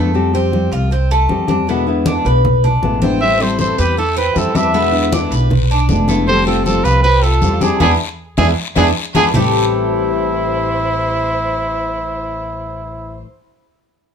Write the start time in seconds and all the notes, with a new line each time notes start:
Already playing: F2 D3 G#3 A3 B3 E4
0.14 F3 G3 C4 G4, high conga
0.33 G3 C4 G4, high conga
0.52 F3 G3 C4 G4, high conga
0.71 C2 F4, high conga
0.90 C4, muted nylon-string guitar stroke, high conga
1.11 A3, high conga
1.28 F3 G3 C4 G4, high conga
1.47 G3 C4 D4 G4, high conga
1.67 B2 D3 G#3 B3 E4, high conga
1.87 D3 G#3 B3 E4, high conga
2.06 D3 G#3 B3 D4 E4, high conga
2.25 B1 B4, high conga
2.44 muted nylon-string guitar stroke, high conga, low conga
2.64 D4, high conga, low conga
2.82 A1 D3 G#3 B3 E4, high conga
3.02 D3 G#3 B3 C4 E4, high conga
3.21 E3 G3 C4 E4 C5 E5, high conga, long guiro
3.40 G3 C4 E4 A4 C5, high conga
3.59 E3 G3 C4 E4 A4 C5, high conga, short guiro
3.78 E2 G4 B4, high conga, short guiro
3.97 E4 A4, muted nylon-string guitar stroke, high conga, long guiro
4.17 C4 G4 B4, high conga
4.35 E2 E3 G3 C4 E4 A4, high conga, short guiro
4.54 G3 C4 D4 E4 B4 E5, high conga, short guiro
4.73 B2 D3 G#3 B3 E4, high conga, long guiro
4.92 D3 G#3 B3 E4, high conga
5.12 D3 G#3 B3 D4 E4, high conga, short guiro
5.31 B1 B4, high conga, short guiro
5.50 muted nylon-string guitar stroke, high conga, low conga, long guiro
5.70 D4, high conga
5.89 F1 D3 G#3 B3 E4, high conga, short guiro
6.08 D3 G#3 A3 B3 E4, high conga, short guiro
6.27 F3 G3 C4 G4 A4 C5, high conga, long guiro
6.46 G3 C4 F4 G4 A4, high conga
6.65 F3 G3 C4 F4 G4 A4, high conga, short guiro
6.84 C2 F4 G4 B4, high conga, short guiro
7.03 C4 G4 B4, muted nylon-string guitar stroke, high conga, long guiro
7.23 A3 F4 A4, high conga
7.42 E2 F3 G3 C4 G4, high conga, short guiro
7.61 G3 C4 D4 E4 G4 G#4, high conga, short guiro
7.80 E2 E3 G#3 B3 D4 E4 G#4, high conga, long guiro
8.37 E2 E3 G#3 B3 D4 E4 G#4, high conga, long guiro
8.76 E2 E3 G#3 B3 D4 E4 G#4, high conga, long guiro
9.15 E2 E3 G#3 B3 D4 E4 G#4, high conga, long guiro
9.34 A1 A2 E3 G3 A3 C4 E4 G4 C5, low conga, long guiro